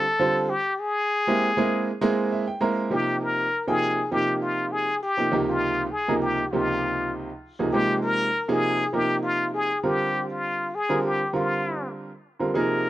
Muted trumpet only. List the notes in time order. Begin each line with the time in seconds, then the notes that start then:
Already playing: A4
0.50 G4
0.80 G#4
2.93 G4
3.23 A#4
3.69 G#4
4.12 G4
4.42 F4
4.72 G#4
5.03 G4
5.49 F4
5.91 G#4
6.22 G4
6.52 F4
7.72 G4
8.03 A#4
8.49 G#4
8.94 G4
9.23 F4
9.54 G#4
9.84 G4
10.30 F4
10.75 G#4
11.05 G4
11.36 F4
12.53 A#4